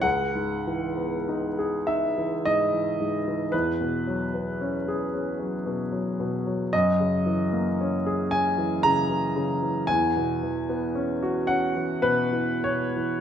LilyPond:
<<
  \new Staff \with { instrumentName = "Grand piano" } { \time 3/4 \key cis \dorian \tempo 4 = 56 fis''4. e''8 dis''4 | b'4. r4. | dis''4. gis''8 ais''4 | gis''4. fis''8 b'8 cis''8 | }
  \new Staff \with { instrumentName = "Grand piano" } { \clef bass \time 3/4 \key cis \dorian cis,16 gis,16 e16 b16 dis'16 gis'16 dis'16 e16 gis,16 e16 gis,16 e16 | e,16 b,16 fis16 b16 cis'16 gis'16 cis'16 fis16 b,16 fis16 b,16 fis16 | fis,16 cis16 e16 ais16 cis'16 gis'16 cis'16 e16 cis16 e16 cis16 e16 | e,16 b,16 e16 b16 cis'16 fis'16 cis'16 e16 b,16 e16 b,16 e16 | }
>>